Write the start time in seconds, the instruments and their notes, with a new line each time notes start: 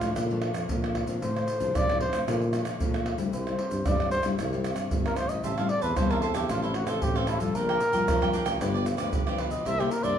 Already playing: nylon-string guitar A2, trumpet F4
0.01 tuba A2, nylon-string guitar F3 A3 D4, pandeiro, tamborim, shaker, surdo
0.16 tuba A#2, nylon-string guitar A#2, pandeiro, tamborim, shaker, surdo
0.31 nylon-string guitar F3 A3 D4, pandeiro, shaker
0.42 pandeiro, tamborim
0.54 tuba F2, pandeiro, tamborim, shaker
0.69 nylon-string guitar F2 F3 A3 D4, tuba A#2, pandeiro, shaker, surdo
0.84 pandeiro, tamborim, shaker
0.95 pandeiro, tamborim, surdo
1.07 tuba A#2, nylon-string guitar F3 C4 D4, pandeiro, shaker, surdo
1.22 nylon-string guitar A2, tuba A2, trumpet C5, pandeiro, shaker, surdo
1.36 pandeiro, tamborim, shaker
1.48 pandeiro, shaker
1.60 tuba C2, nylon-string guitar F3 C4 D4, pandeiro, shaker, surdo
1.75 tuba C2, nylon-string guitar A2, trumpet D5, pandeiro, tamborim, shaker, surdo
1.89 pandeiro, tamborim, shaker, surdo
2.00 nylon-string guitar F3 C4 D4, trumpet C5, pandeiro
2.13 tuba A2, pandeiro, tamborim, shaker, surdo
2.27 nylon-string guitar A#2 F3 A3 D4, tuba A#2, pandeiro, tamborim, shaker, surdo
2.41 pandeiro, shaker
2.53 nylon-string guitar F3 A3 D4, pandeiro, tamborim, shaker
2.65 pandeiro, tamborim, shaker
2.80 nylon-string guitar F2 F3 A3 D4, tuba A#2, pandeiro, shaker, surdo
2.94 pandeiro, tamborim, shaker
3.06 pandeiro, tamborim
3.18 tuba D2, nylon-string guitar G3 C4 E4, pandeiro, shaker, surdo
3.33 tuba C2, nylon-string guitar C3, trumpet C5, pandeiro, shaker, surdo
3.47 nylon-string guitar G3 C4 E4, pandeiro, tamborim, shaker
3.59 pandeiro
3.71 tuba G2, pandeiro, shaker, surdo
3.86 tuba G2, nylon-string guitar G2 G3 C4 E4, trumpet D5, pandeiro, tamborim, shaker, surdo
4.00 pandeiro, tamborim, shaker, surdo
4.11 trumpet C5, pandeiro, shaker
4.23 tuba G2, nylon-string guitar G3 C4 E4, pandeiro, tamborim, shaker, surdo
4.39 tuba C2, nylon-string guitar C3, pandeiro, tamborim, shaker, surdo
4.53 nylon-string guitar G3 C4 E4, pandeiro, shaker
4.64 pandeiro, tamborim, shaker
4.76 tuba G2, pandeiro, tamborim, shaker
4.91 tuba G1, nylon-string guitar G2 G3 C4 E4, pandeiro, shaker, surdo
5.06 trumpet A#4, pandeiro, tamborim, shaker
5.16 tuba A1, trumpet C5, pandeiro, tamborim, shaker
5.29 nylon-string guitar G3 C4 E4, trumpet D#5, pandeiro, shaker, surdo
5.43 tuba A1, nylon-string guitar A2, cavaquinho G4 C5 E5 A5, trumpet E5, pandeiro, shaker, surdo
5.58 nylon-string guitar G3 C4 E4, cavaquinho C5 E5 A5, trumpet F5, pandeiro, tamborim, shaker
5.69 trumpet D5, muted cavaquinho stroke, pandeiro
5.82 tuba E2, trumpet B4, cavaquinho C5 E5 A5, pandeiro, shaker, surdo
5.96 tuba E2, nylon-string guitar E3 G3 C4 E4, cavaquinho G4 C5 E5 A5, trumpet C5, pandeiro, tamborim, shaker, surdo
6.11 trumpet A#4, cavaquinho C5 E5 A5, pandeiro, tamborim, shaker, surdo
6.22 cavaquinho G4 C5 E5 A5, trumpet A4, pandeiro
6.34 tuba E2, nylon-string guitar F3 C4 D4, trumpet G4, cavaquinho C5 E5 A5, pandeiro, tamborim, shaker, surdo
6.49 tuba A1, nylon-string guitar A2, cavaquinho D4 A4 C5 F5, trumpet F4, pandeiro, tamborim, shaker, surdo
6.62 nylon-string guitar F3 C4 D4, trumpet E4, cavaquinho A4 C5 F5, pandeiro, shaker
6.74 trumpet F#4, muted cavaquinho stroke, pandeiro, tamborim
6.87 tuba A1, trumpet A4, cavaquinho A4 C5 F5, pandeiro, tamborim, shaker
7.02 tuba A1, nylon-string guitar A2 F3 C4 D4, trumpet G4, pandeiro, shaker, surdo
7.15 trumpet C4, cavaquinho A4 C5 F5, pandeiro, tamborim, shaker
7.27 cavaquinho D4 A4 C5 F5, trumpet E4, pandeiro, tamborim, shaker, surdo
7.40 tuba F2, nylon-string guitar G3 D4 F4, trumpet A4, pandeiro, shaker, surdo
7.55 tuba A#1, nylon-string guitar A#2, cavaquinho D4 A#4 D5 G5, trumpet A#4, pandeiro, shaker, surdo
7.69 cavaquinho A#4 D5 G5, pandeiro, tamborim, shaker
7.80 muted cavaquinho stroke, pandeiro, shaker
7.93 tuba F2, nylon-string guitar G3 D4 F4, cavaquinho A#4 D5 G5, pandeiro, shaker, surdo
8.08 tuba F2, nylon-string guitar F3, cavaquinho D4 A#4 D5 G5, pandeiro, tamborim, shaker, surdo
8.22 nylon-string guitar G3 D4 F4, cavaquinho A#4 D5 G5, pandeiro, tamborim, shaker, surdo
8.33 cavaquinho D4 A#4 D5 G5, pandeiro, shaker
8.45 tuba A1, cavaquinho A#4 D5 G5, pandeiro, tamborim, shaker, surdo
8.60 tuba G1, nylon-string guitar G2 F3 B3 D4, cavaquinho F4 G4 B4 D5, pandeiro, tamborim, shaker, surdo
8.74 cavaquinho G4 B4 D5, pandeiro, shaker
8.86 muted cavaquinho stroke, pandeiro, tamborim, shaker
8.97 tuba D2, nylon-string guitar F3 B3 D4, cavaquinho G4 B4 D5, pandeiro, tamborim, shaker
9.13 tuba G1, nylon-string guitar D3, pandeiro, shaker, surdo
9.26 nylon-string guitar F3 B3 D4, cavaquinho G4 B4 D5, pandeiro, tamborim, shaker
9.38 cavaquinho F4 G4 B4 D5, pandeiro, tamborim, surdo
9.51 trumpet D#5, pandeiro, shaker, surdo
9.65 tuba C2, nylon-string guitar C3 A#3 E4 G4, cavaquinho E4 A#4 C5 E5, trumpet E5, pandeiro, shaker, surdo
9.79 nylon-string guitar A#3 E4 G4, trumpet G4, cavaquinho A#4 C5 E5, pandeiro, tamborim, shaker
9.91 trumpet A#4, muted cavaquinho stroke, pandeiro, shaker
10.03 tuba G2, cavaquinho A#4 C5 E5, trumpet D5, pandeiro, shaker, surdo